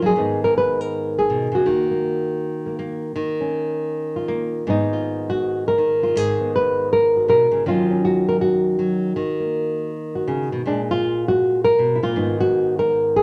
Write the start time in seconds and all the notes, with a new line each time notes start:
Already playing: D#3 C#4
0.02 F#3 G#4
0.16 G#2 D#3 B3 D#4
0.44 A#4
0.58 B4
0.81 A#4
1.19 G#4
1.30 B2
1.52 C#3 F#4
1.66 D#3 A#3
1.91 A#3
2.66 A#3
2.79 A#3
3.16 D#3
3.41 C#4
4.16 F4
4.28 A#3
4.67 G#2 D#3 B3 D#4
4.93 F4
5.30 F#4
5.68 A#4
5.78 D#3
6.03 F4
6.16 G#2 G#4
6.40 B3
6.56 B4
6.93 A#4
7.17 F#4
7.28 B2 A#4
7.52 C#3
7.66 D#3 F#3 C#4 D#4 F4
7.91 C#4
8.05 F#4
8.29 A#4
8.41 F#4
8.79 F#3
9.16 D#3
9.40 A#3
10.15 F#4
10.28 C#3
10.52 B2
10.66 A#2 G#3 D4
10.91 F4
11.28 F#4
11.64 A#4
11.79 B2
11.95 E4
12.03 A#2 F4
12.16 G#2 D#3 B3 D#4
12.40 F#4
12.79 A#4
13.16 G#4